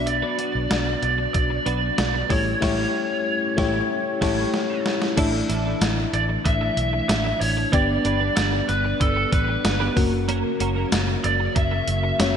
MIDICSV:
0, 0, Header, 1, 8, 480
1, 0, Start_track
1, 0, Tempo, 638298
1, 53, Time_signature, 4, 2, 24, 8
1, 9301, End_track
2, 0, Start_track
2, 0, Title_t, "Lead electric guitar"
2, 0, Program_c, 0, 29
2, 54, Note_on_c, 0, 74, 100
2, 766, Note_off_c, 0, 74, 0
2, 775, Note_on_c, 0, 74, 87
2, 1001, Note_off_c, 0, 74, 0
2, 1010, Note_on_c, 0, 74, 86
2, 1731, Note_off_c, 0, 74, 0
2, 1734, Note_on_c, 0, 73, 80
2, 3624, Note_off_c, 0, 73, 0
2, 4616, Note_on_c, 0, 74, 96
2, 4680, Note_off_c, 0, 74, 0
2, 4857, Note_on_c, 0, 76, 96
2, 5322, Note_off_c, 0, 76, 0
2, 5331, Note_on_c, 0, 76, 100
2, 5566, Note_off_c, 0, 76, 0
2, 5569, Note_on_c, 0, 73, 92
2, 5809, Note_off_c, 0, 73, 0
2, 5812, Note_on_c, 0, 74, 94
2, 6281, Note_off_c, 0, 74, 0
2, 6290, Note_on_c, 0, 74, 93
2, 6515, Note_off_c, 0, 74, 0
2, 6532, Note_on_c, 0, 71, 89
2, 6773, Note_off_c, 0, 71, 0
2, 6776, Note_on_c, 0, 69, 84
2, 7009, Note_off_c, 0, 69, 0
2, 7012, Note_on_c, 0, 71, 80
2, 7462, Note_off_c, 0, 71, 0
2, 8455, Note_on_c, 0, 74, 96
2, 8690, Note_off_c, 0, 74, 0
2, 8693, Note_on_c, 0, 76, 101
2, 9162, Note_off_c, 0, 76, 0
2, 9171, Note_on_c, 0, 76, 106
2, 9301, Note_off_c, 0, 76, 0
2, 9301, End_track
3, 0, Start_track
3, 0, Title_t, "FM electric piano"
3, 0, Program_c, 1, 5
3, 0, Control_c, 1, 64, 127
3, 0, Note_on_c, 1, 59, 62
3, 0, Note_on_c, 1, 62, 57
3, 0, Note_on_c, 1, 66, 58
3, 0, Note_on_c, 1, 74, 69
3, 1698, Note_off_c, 1, 59, 0
3, 1702, Note_off_c, 1, 62, 0
3, 1705, Note_off_c, 1, 66, 0
3, 1708, Note_off_c, 1, 74, 0
3, 1722, Note_on_c, 1, 57, 66
3, 1728, Note_on_c, 1, 64, 58
3, 1735, Note_on_c, 1, 67, 56
3, 1741, Note_on_c, 1, 73, 71
3, 1743, Control_c, 1, 64, 0
3, 1879, Control_c, 1, 64, 127
3, 1953, Note_off_c, 1, 57, 0
3, 1958, Note_off_c, 1, 64, 0
3, 1962, Note_on_c, 1, 57, 92
3, 1965, Note_off_c, 1, 67, 0
3, 1967, Note_on_c, 1, 64, 96
3, 1971, Note_off_c, 1, 73, 0
3, 1974, Note_on_c, 1, 67, 94
3, 1980, Note_on_c, 1, 73, 98
3, 2130, Note_off_c, 1, 57, 0
3, 2133, Note_off_c, 1, 64, 0
3, 2137, Note_off_c, 1, 67, 0
3, 2140, Note_off_c, 1, 73, 0
3, 2682, Note_on_c, 1, 57, 102
3, 2689, Note_on_c, 1, 64, 101
3, 2695, Note_on_c, 1, 67, 99
3, 2700, Note_on_c, 1, 73, 100
3, 2850, Note_off_c, 1, 57, 0
3, 2854, Note_off_c, 1, 64, 0
3, 2857, Note_off_c, 1, 67, 0
3, 2860, Note_off_c, 1, 73, 0
3, 3167, Note_on_c, 1, 57, 91
3, 3170, Note_on_c, 1, 64, 92
3, 3173, Note_on_c, 1, 67, 93
3, 3177, Note_on_c, 1, 73, 98
3, 3333, Note_off_c, 1, 57, 0
3, 3335, Note_off_c, 1, 64, 0
3, 3337, Note_off_c, 1, 67, 0
3, 3339, Note_off_c, 1, 73, 0
3, 3883, Note_on_c, 1, 57, 78
3, 3889, Note_on_c, 1, 62, 72
3, 3896, Note_on_c, 1, 64, 71
3, 3902, Control_c, 1, 64, 0
3, 3902, Note_on_c, 1, 76, 84
3, 4014, Control_c, 1, 64, 127
3, 5778, Note_off_c, 1, 57, 0
3, 5781, Note_off_c, 1, 62, 0
3, 5785, Note_off_c, 1, 64, 0
3, 5788, Note_off_c, 1, 76, 0
3, 5804, Note_on_c, 1, 59, 66
3, 5811, Note_on_c, 1, 62, 60
3, 5818, Note_on_c, 1, 67, 59
3, 5823, Control_c, 1, 64, 0
3, 5823, Note_on_c, 1, 74, 74
3, 5968, Control_c, 1, 64, 127
3, 7458, Note_off_c, 1, 59, 0
3, 7462, Note_off_c, 1, 62, 0
3, 7465, Note_off_c, 1, 67, 0
3, 7468, Note_off_c, 1, 74, 0
3, 7488, Note_on_c, 1, 58, 66
3, 7492, Note_on_c, 1, 49, 65
3, 7498, Note_on_c, 1, 66, 63
3, 7505, Control_c, 1, 64, 0
3, 7505, Note_on_c, 1, 70, 75
3, 7656, Control_c, 1, 64, 127
3, 9141, Note_off_c, 1, 58, 0
3, 9143, Note_off_c, 1, 49, 0
3, 9146, Note_off_c, 1, 66, 0
3, 9149, Note_off_c, 1, 70, 0
3, 9167, Note_on_c, 1, 58, 47
3, 9171, Note_on_c, 1, 61, 46
3, 9173, Note_on_c, 1, 66, 44
3, 9175, Note_on_c, 1, 73, 55
3, 9301, Note_off_c, 1, 58, 0
3, 9301, Note_off_c, 1, 61, 0
3, 9301, Note_off_c, 1, 66, 0
3, 9301, Note_off_c, 1, 73, 0
3, 9301, End_track
4, 0, Start_track
4, 0, Title_t, "Clean electric guitar"
4, 0, Program_c, 2, 27
4, 167, Note_on_c, 2, 71, 78
4, 173, Note_on_c, 2, 66, 71
4, 177, Note_on_c, 2, 62, 70
4, 180, Note_on_c, 2, 59, 64
4, 278, Note_off_c, 2, 59, 0
4, 283, Note_off_c, 2, 62, 0
4, 287, Note_off_c, 2, 66, 0
4, 287, Note_on_c, 2, 59, 61
4, 290, Note_off_c, 2, 71, 0
4, 292, Note_on_c, 2, 62, 71
4, 296, Note_on_c, 2, 66, 71
4, 299, Note_on_c, 2, 71, 66
4, 399, Note_off_c, 2, 71, 0
4, 405, Note_off_c, 2, 66, 0
4, 408, Note_off_c, 2, 62, 0
4, 418, Note_off_c, 2, 59, 0
4, 1247, Note_on_c, 2, 59, 83
4, 1252, Note_on_c, 2, 62, 82
4, 1257, Note_on_c, 2, 66, 82
4, 1261, Note_on_c, 2, 71, 89
4, 1361, Note_off_c, 2, 71, 0
4, 1367, Note_off_c, 2, 66, 0
4, 1371, Note_off_c, 2, 62, 0
4, 1414, Note_off_c, 2, 59, 0
4, 1727, Note_on_c, 2, 55, 78
4, 1732, Note_on_c, 2, 61, 80
4, 1736, Note_on_c, 2, 64, 77
4, 1741, Note_on_c, 2, 69, 82
4, 1842, Note_off_c, 2, 69, 0
4, 1846, Note_off_c, 2, 64, 0
4, 1851, Note_off_c, 2, 61, 0
4, 1894, Note_off_c, 2, 55, 0
4, 1969, Note_on_c, 2, 69, 94
4, 1974, Note_on_c, 2, 64, 96
4, 1979, Note_on_c, 2, 61, 86
4, 1982, Note_on_c, 2, 55, 98
4, 2134, Note_off_c, 2, 69, 0
4, 2137, Note_off_c, 2, 64, 0
4, 2140, Note_off_c, 2, 61, 0
4, 2142, Note_off_c, 2, 55, 0
4, 2690, Note_on_c, 2, 55, 102
4, 2695, Note_on_c, 2, 61, 100
4, 2699, Note_on_c, 2, 64, 106
4, 2703, Note_on_c, 2, 69, 100
4, 2854, Note_off_c, 2, 55, 0
4, 2857, Note_off_c, 2, 61, 0
4, 2860, Note_off_c, 2, 64, 0
4, 2862, Note_off_c, 2, 69, 0
4, 3167, Note_on_c, 2, 55, 95
4, 3172, Note_on_c, 2, 61, 94
4, 3176, Note_on_c, 2, 64, 96
4, 3180, Note_on_c, 2, 69, 95
4, 3333, Note_off_c, 2, 55, 0
4, 3336, Note_off_c, 2, 61, 0
4, 3338, Note_off_c, 2, 64, 0
4, 3341, Note_off_c, 2, 69, 0
4, 3889, Note_on_c, 2, 57, 71
4, 3894, Note_on_c, 2, 62, 78
4, 3899, Note_on_c, 2, 64, 82
4, 3903, Note_on_c, 2, 69, 85
4, 4003, Note_off_c, 2, 69, 0
4, 4007, Note_off_c, 2, 64, 0
4, 4011, Note_off_c, 2, 62, 0
4, 4055, Note_off_c, 2, 57, 0
4, 4128, Note_on_c, 2, 57, 60
4, 4133, Note_on_c, 2, 62, 58
4, 4137, Note_on_c, 2, 64, 68
4, 4141, Note_on_c, 2, 69, 63
4, 4241, Note_off_c, 2, 69, 0
4, 4246, Note_off_c, 2, 64, 0
4, 4250, Note_off_c, 2, 62, 0
4, 4250, Note_on_c, 2, 69, 71
4, 4254, Note_off_c, 2, 57, 0
4, 4255, Note_on_c, 2, 64, 65
4, 4259, Note_on_c, 2, 62, 60
4, 4263, Note_on_c, 2, 57, 60
4, 4361, Note_off_c, 2, 57, 0
4, 4365, Note_off_c, 2, 62, 0
4, 4367, Note_off_c, 2, 64, 0
4, 4370, Note_off_c, 2, 69, 0
4, 5810, Note_on_c, 2, 59, 83
4, 5815, Note_on_c, 2, 62, 86
4, 5820, Note_on_c, 2, 67, 84
4, 5823, Note_on_c, 2, 71, 90
4, 5923, Note_off_c, 2, 71, 0
4, 5927, Note_off_c, 2, 67, 0
4, 5932, Note_off_c, 2, 62, 0
4, 5976, Note_off_c, 2, 59, 0
4, 6048, Note_on_c, 2, 59, 64
4, 6053, Note_on_c, 2, 62, 64
4, 6058, Note_on_c, 2, 67, 66
4, 6061, Note_on_c, 2, 71, 69
4, 6159, Note_off_c, 2, 71, 0
4, 6165, Note_off_c, 2, 67, 0
4, 6168, Note_off_c, 2, 62, 0
4, 6168, Note_on_c, 2, 71, 63
4, 6173, Note_off_c, 2, 59, 0
4, 6174, Note_on_c, 2, 67, 58
4, 6177, Note_on_c, 2, 62, 59
4, 6182, Note_on_c, 2, 59, 46
4, 6282, Note_off_c, 2, 59, 0
4, 6284, Note_off_c, 2, 62, 0
4, 6288, Note_off_c, 2, 67, 0
4, 6291, Note_off_c, 2, 71, 0
4, 7370, Note_on_c, 2, 71, 90
4, 7375, Note_on_c, 2, 67, 83
4, 7378, Note_on_c, 2, 62, 73
4, 7383, Note_on_c, 2, 59, 72
4, 7488, Note_off_c, 2, 59, 0
4, 7491, Note_on_c, 2, 58, 61
4, 7493, Note_off_c, 2, 62, 0
4, 7496, Note_on_c, 2, 61, 59
4, 7498, Note_off_c, 2, 67, 0
4, 7500, Note_off_c, 2, 71, 0
4, 7501, Note_on_c, 2, 66, 60
4, 7503, Note_on_c, 2, 70, 68
4, 7602, Note_off_c, 2, 70, 0
4, 7608, Note_off_c, 2, 66, 0
4, 7612, Note_off_c, 2, 61, 0
4, 7620, Note_off_c, 2, 58, 0
4, 7730, Note_on_c, 2, 58, 80
4, 7736, Note_on_c, 2, 61, 77
4, 7740, Note_on_c, 2, 66, 84
4, 7743, Note_on_c, 2, 70, 91
4, 7842, Note_off_c, 2, 70, 0
4, 7848, Note_off_c, 2, 66, 0
4, 7851, Note_off_c, 2, 61, 0
4, 7896, Note_off_c, 2, 58, 0
4, 7969, Note_on_c, 2, 58, 69
4, 7974, Note_on_c, 2, 61, 63
4, 7978, Note_on_c, 2, 66, 75
4, 7983, Note_on_c, 2, 70, 76
4, 8080, Note_off_c, 2, 70, 0
4, 8086, Note_off_c, 2, 66, 0
4, 8089, Note_on_c, 2, 70, 62
4, 8090, Note_off_c, 2, 61, 0
4, 8094, Note_off_c, 2, 58, 0
4, 8095, Note_on_c, 2, 66, 54
4, 8099, Note_on_c, 2, 61, 52
4, 8103, Note_on_c, 2, 58, 50
4, 8199, Note_off_c, 2, 58, 0
4, 8204, Note_off_c, 2, 61, 0
4, 8207, Note_off_c, 2, 66, 0
4, 8209, Note_off_c, 2, 70, 0
4, 9301, End_track
5, 0, Start_track
5, 0, Title_t, "String machine"
5, 0, Program_c, 3, 50
5, 0, Note_on_c, 3, 54, 73
5, 0, Note_on_c, 3, 59, 67
5, 0, Note_on_c, 3, 62, 69
5, 1705, Note_off_c, 3, 62, 0
5, 1713, Note_off_c, 3, 59, 0
5, 1714, Note_off_c, 3, 54, 0
5, 1730, Note_on_c, 3, 55, 75
5, 1730, Note_on_c, 3, 57, 68
5, 1731, Note_on_c, 3, 61, 81
5, 3870, Note_off_c, 3, 55, 0
5, 3870, Note_off_c, 3, 57, 0
5, 3871, Note_off_c, 3, 61, 0
5, 3893, Note_on_c, 3, 52, 80
5, 3893, Note_on_c, 3, 57, 70
5, 3894, Note_on_c, 3, 62, 89
5, 5794, Note_off_c, 3, 52, 0
5, 5794, Note_off_c, 3, 57, 0
5, 5813, Note_on_c, 3, 55, 80
5, 5814, Note_on_c, 3, 59, 74
5, 7464, Note_off_c, 3, 62, 0
5, 7476, Note_off_c, 3, 55, 0
5, 7477, Note_off_c, 3, 59, 0
5, 7495, Note_on_c, 3, 54, 77
5, 7496, Note_on_c, 3, 49, 83
5, 7496, Note_on_c, 3, 58, 72
5, 9301, Note_off_c, 3, 49, 0
5, 9301, Note_off_c, 3, 54, 0
5, 9301, Note_off_c, 3, 58, 0
5, 9301, End_track
6, 0, Start_track
6, 0, Title_t, "Fingered electric bass"
6, 0, Program_c, 4, 33
6, 0, Note_on_c, 4, 35, 94
6, 157, Note_off_c, 4, 35, 0
6, 414, Note_on_c, 4, 35, 89
6, 500, Note_off_c, 4, 35, 0
6, 533, Note_on_c, 4, 35, 92
6, 706, Note_off_c, 4, 35, 0
6, 770, Note_on_c, 4, 35, 87
6, 944, Note_off_c, 4, 35, 0
6, 1013, Note_on_c, 4, 35, 108
6, 1186, Note_off_c, 4, 35, 0
6, 1250, Note_on_c, 4, 35, 91
6, 1424, Note_off_c, 4, 35, 0
6, 1493, Note_on_c, 4, 35, 95
6, 1666, Note_off_c, 4, 35, 0
6, 1732, Note_on_c, 4, 33, 97
6, 1905, Note_off_c, 4, 33, 0
6, 1972, Note_on_c, 4, 33, 97
6, 2136, Note_off_c, 4, 33, 0
6, 2692, Note_on_c, 4, 33, 94
6, 2856, Note_off_c, 4, 33, 0
6, 3173, Note_on_c, 4, 33, 98
6, 3336, Note_off_c, 4, 33, 0
6, 3893, Note_on_c, 4, 33, 104
6, 4066, Note_off_c, 4, 33, 0
6, 4131, Note_on_c, 4, 33, 92
6, 4305, Note_off_c, 4, 33, 0
6, 4370, Note_on_c, 4, 33, 100
6, 4544, Note_off_c, 4, 33, 0
6, 4611, Note_on_c, 4, 33, 96
6, 4785, Note_off_c, 4, 33, 0
6, 4854, Note_on_c, 4, 33, 95
6, 5027, Note_off_c, 4, 33, 0
6, 5091, Note_on_c, 4, 35, 87
6, 5264, Note_off_c, 4, 35, 0
6, 5330, Note_on_c, 4, 33, 102
6, 5504, Note_off_c, 4, 33, 0
6, 5571, Note_on_c, 4, 33, 99
6, 5744, Note_off_c, 4, 33, 0
6, 5814, Note_on_c, 4, 31, 100
6, 5986, Note_off_c, 4, 31, 0
6, 6053, Note_on_c, 4, 31, 95
6, 6226, Note_off_c, 4, 31, 0
6, 6293, Note_on_c, 4, 31, 105
6, 6466, Note_off_c, 4, 31, 0
6, 6535, Note_on_c, 4, 31, 92
6, 6707, Note_off_c, 4, 31, 0
6, 6774, Note_on_c, 4, 31, 110
6, 6947, Note_off_c, 4, 31, 0
6, 7012, Note_on_c, 4, 33, 88
6, 7185, Note_off_c, 4, 33, 0
6, 7254, Note_on_c, 4, 31, 100
6, 7426, Note_off_c, 4, 31, 0
6, 7494, Note_on_c, 4, 30, 94
6, 7840, Note_off_c, 4, 30, 0
6, 7973, Note_on_c, 4, 30, 105
6, 8146, Note_off_c, 4, 30, 0
6, 8212, Note_on_c, 4, 30, 95
6, 8386, Note_off_c, 4, 30, 0
6, 8453, Note_on_c, 4, 30, 96
6, 8626, Note_off_c, 4, 30, 0
6, 8694, Note_on_c, 4, 30, 98
6, 8867, Note_off_c, 4, 30, 0
6, 8930, Note_on_c, 4, 30, 95
6, 9104, Note_off_c, 4, 30, 0
6, 9171, Note_on_c, 4, 30, 101
6, 9301, Note_off_c, 4, 30, 0
6, 9301, End_track
7, 0, Start_track
7, 0, Title_t, "Muted clean electric guitar strokes"
7, 50, Note_on_c, 9, 29, 37
7, 125, Note_off_c, 9, 29, 0
7, 408, Note_on_c, 9, 29, 43
7, 483, Note_off_c, 9, 29, 0
7, 528, Note_on_c, 9, 29, 39
7, 603, Note_off_c, 9, 29, 0
7, 647, Note_on_c, 9, 29, 36
7, 722, Note_off_c, 9, 29, 0
7, 888, Note_on_c, 9, 29, 53
7, 963, Note_off_c, 9, 29, 0
7, 1129, Note_on_c, 9, 29, 42
7, 1204, Note_off_c, 9, 29, 0
7, 1370, Note_on_c, 9, 29, 36
7, 1445, Note_off_c, 9, 29, 0
7, 1489, Note_on_c, 9, 29, 37
7, 1564, Note_off_c, 9, 29, 0
7, 1609, Note_on_c, 9, 29, 50
7, 1684, Note_off_c, 9, 29, 0
7, 1851, Note_on_c, 9, 29, 49
7, 1926, Note_off_c, 9, 29, 0
7, 4012, Note_on_c, 9, 29, 39
7, 4087, Note_off_c, 9, 29, 0
7, 4370, Note_on_c, 9, 29, 48
7, 4445, Note_off_c, 9, 29, 0
7, 4492, Note_on_c, 9, 29, 42
7, 4567, Note_off_c, 9, 29, 0
7, 4731, Note_on_c, 9, 29, 47
7, 4806, Note_off_c, 9, 29, 0
7, 4852, Note_on_c, 9, 29, 43
7, 4928, Note_off_c, 9, 29, 0
7, 4972, Note_on_c, 9, 29, 39
7, 5047, Note_off_c, 9, 29, 0
7, 5213, Note_on_c, 9, 29, 45
7, 5288, Note_off_c, 9, 29, 0
7, 5333, Note_on_c, 9, 29, 39
7, 5408, Note_off_c, 9, 29, 0
7, 5453, Note_on_c, 9, 29, 39
7, 5529, Note_off_c, 9, 29, 0
7, 5693, Note_on_c, 9, 29, 47
7, 5768, Note_off_c, 9, 29, 0
7, 5932, Note_on_c, 9, 29, 45
7, 6007, Note_off_c, 9, 29, 0
7, 6291, Note_on_c, 9, 29, 38
7, 6366, Note_off_c, 9, 29, 0
7, 6411, Note_on_c, 9, 29, 44
7, 6486, Note_off_c, 9, 29, 0
7, 6651, Note_on_c, 9, 29, 49
7, 6727, Note_off_c, 9, 29, 0
7, 6770, Note_on_c, 9, 29, 48
7, 6845, Note_off_c, 9, 29, 0
7, 6892, Note_on_c, 9, 29, 54
7, 6967, Note_off_c, 9, 29, 0
7, 7130, Note_on_c, 9, 29, 44
7, 7205, Note_off_c, 9, 29, 0
7, 7252, Note_on_c, 9, 29, 41
7, 7328, Note_off_c, 9, 29, 0
7, 7611, Note_on_c, 9, 29, 39
7, 7686, Note_off_c, 9, 29, 0
7, 7851, Note_on_c, 9, 29, 43
7, 7927, Note_off_c, 9, 29, 0
7, 8208, Note_on_c, 9, 29, 44
7, 8283, Note_off_c, 9, 29, 0
7, 8330, Note_on_c, 9, 29, 50
7, 8405, Note_off_c, 9, 29, 0
7, 8571, Note_on_c, 9, 29, 39
7, 8646, Note_off_c, 9, 29, 0
7, 8690, Note_on_c, 9, 29, 46
7, 8765, Note_off_c, 9, 29, 0
7, 8810, Note_on_c, 9, 29, 48
7, 8885, Note_off_c, 9, 29, 0
7, 9050, Note_on_c, 9, 29, 44
7, 9125, Note_off_c, 9, 29, 0
7, 9168, Note_on_c, 9, 29, 36
7, 9243, Note_off_c, 9, 29, 0
7, 9301, End_track
8, 0, Start_track
8, 0, Title_t, "Drums"
8, 52, Note_on_c, 9, 42, 92
8, 127, Note_off_c, 9, 42, 0
8, 291, Note_on_c, 9, 42, 73
8, 366, Note_off_c, 9, 42, 0
8, 532, Note_on_c, 9, 38, 110
8, 533, Note_on_c, 9, 42, 81
8, 607, Note_off_c, 9, 38, 0
8, 608, Note_off_c, 9, 42, 0
8, 771, Note_on_c, 9, 42, 62
8, 846, Note_off_c, 9, 42, 0
8, 1011, Note_on_c, 9, 42, 91
8, 1012, Note_on_c, 9, 36, 86
8, 1086, Note_off_c, 9, 42, 0
8, 1087, Note_off_c, 9, 36, 0
8, 1251, Note_on_c, 9, 42, 72
8, 1326, Note_off_c, 9, 42, 0
8, 1490, Note_on_c, 9, 42, 80
8, 1491, Note_on_c, 9, 38, 114
8, 1565, Note_off_c, 9, 42, 0
8, 1566, Note_off_c, 9, 38, 0
8, 1732, Note_on_c, 9, 36, 103
8, 1733, Note_on_c, 9, 46, 79
8, 1807, Note_off_c, 9, 36, 0
8, 1809, Note_off_c, 9, 46, 0
8, 1972, Note_on_c, 9, 36, 106
8, 1972, Note_on_c, 9, 38, 106
8, 1972, Note_on_c, 9, 49, 77
8, 2047, Note_off_c, 9, 36, 0
8, 2047, Note_off_c, 9, 38, 0
8, 2047, Note_off_c, 9, 49, 0
8, 2692, Note_on_c, 9, 36, 104
8, 2693, Note_on_c, 9, 38, 99
8, 2768, Note_off_c, 9, 36, 0
8, 2768, Note_off_c, 9, 38, 0
8, 3173, Note_on_c, 9, 36, 110
8, 3173, Note_on_c, 9, 38, 106
8, 3173, Note_on_c, 9, 49, 84
8, 3248, Note_off_c, 9, 36, 0
8, 3248, Note_off_c, 9, 38, 0
8, 3248, Note_off_c, 9, 49, 0
8, 3412, Note_on_c, 9, 38, 86
8, 3487, Note_off_c, 9, 38, 0
8, 3653, Note_on_c, 9, 38, 99
8, 3728, Note_off_c, 9, 38, 0
8, 3773, Note_on_c, 9, 38, 87
8, 3848, Note_off_c, 9, 38, 0
8, 3892, Note_on_c, 9, 36, 107
8, 3892, Note_on_c, 9, 42, 92
8, 3892, Note_on_c, 9, 49, 98
8, 3967, Note_off_c, 9, 36, 0
8, 3967, Note_off_c, 9, 42, 0
8, 3967, Note_off_c, 9, 49, 0
8, 4133, Note_on_c, 9, 42, 74
8, 4208, Note_off_c, 9, 42, 0
8, 4371, Note_on_c, 9, 54, 63
8, 4374, Note_on_c, 9, 38, 114
8, 4375, Note_on_c, 9, 42, 89
8, 4447, Note_off_c, 9, 54, 0
8, 4449, Note_off_c, 9, 38, 0
8, 4451, Note_off_c, 9, 42, 0
8, 4614, Note_on_c, 9, 42, 63
8, 4689, Note_off_c, 9, 42, 0
8, 4854, Note_on_c, 9, 36, 88
8, 4854, Note_on_c, 9, 42, 95
8, 4929, Note_off_c, 9, 36, 0
8, 4929, Note_off_c, 9, 42, 0
8, 5093, Note_on_c, 9, 42, 75
8, 5168, Note_off_c, 9, 42, 0
8, 5334, Note_on_c, 9, 38, 116
8, 5334, Note_on_c, 9, 42, 86
8, 5334, Note_on_c, 9, 54, 62
8, 5409, Note_off_c, 9, 38, 0
8, 5409, Note_off_c, 9, 42, 0
8, 5409, Note_off_c, 9, 54, 0
8, 5576, Note_on_c, 9, 46, 83
8, 5651, Note_off_c, 9, 46, 0
8, 5814, Note_on_c, 9, 36, 110
8, 5815, Note_on_c, 9, 42, 95
8, 5890, Note_off_c, 9, 36, 0
8, 5890, Note_off_c, 9, 42, 0
8, 6053, Note_on_c, 9, 42, 76
8, 6128, Note_off_c, 9, 42, 0
8, 6290, Note_on_c, 9, 54, 62
8, 6293, Note_on_c, 9, 38, 113
8, 6294, Note_on_c, 9, 42, 86
8, 6365, Note_off_c, 9, 54, 0
8, 6368, Note_off_c, 9, 38, 0
8, 6369, Note_off_c, 9, 42, 0
8, 6533, Note_on_c, 9, 42, 64
8, 6609, Note_off_c, 9, 42, 0
8, 6774, Note_on_c, 9, 36, 90
8, 6774, Note_on_c, 9, 42, 94
8, 6849, Note_off_c, 9, 42, 0
8, 6850, Note_off_c, 9, 36, 0
8, 7013, Note_on_c, 9, 36, 93
8, 7013, Note_on_c, 9, 42, 82
8, 7088, Note_off_c, 9, 36, 0
8, 7089, Note_off_c, 9, 42, 0
8, 7254, Note_on_c, 9, 42, 86
8, 7254, Note_on_c, 9, 54, 64
8, 7255, Note_on_c, 9, 38, 123
8, 7329, Note_off_c, 9, 42, 0
8, 7329, Note_off_c, 9, 54, 0
8, 7330, Note_off_c, 9, 38, 0
8, 7495, Note_on_c, 9, 36, 109
8, 7496, Note_on_c, 9, 46, 84
8, 7570, Note_off_c, 9, 36, 0
8, 7572, Note_off_c, 9, 46, 0
8, 7735, Note_on_c, 9, 42, 98
8, 7810, Note_off_c, 9, 42, 0
8, 7974, Note_on_c, 9, 42, 74
8, 8049, Note_off_c, 9, 42, 0
8, 8212, Note_on_c, 9, 54, 61
8, 8215, Note_on_c, 9, 38, 112
8, 8216, Note_on_c, 9, 42, 89
8, 8287, Note_off_c, 9, 54, 0
8, 8290, Note_off_c, 9, 38, 0
8, 8291, Note_off_c, 9, 42, 0
8, 8454, Note_on_c, 9, 42, 65
8, 8529, Note_off_c, 9, 42, 0
8, 8692, Note_on_c, 9, 42, 97
8, 8694, Note_on_c, 9, 36, 87
8, 8767, Note_off_c, 9, 42, 0
8, 8769, Note_off_c, 9, 36, 0
8, 8931, Note_on_c, 9, 42, 78
8, 9006, Note_off_c, 9, 42, 0
8, 9171, Note_on_c, 9, 42, 86
8, 9172, Note_on_c, 9, 38, 122
8, 9172, Note_on_c, 9, 54, 64
8, 9247, Note_off_c, 9, 38, 0
8, 9247, Note_off_c, 9, 42, 0
8, 9247, Note_off_c, 9, 54, 0
8, 9301, End_track
0, 0, End_of_file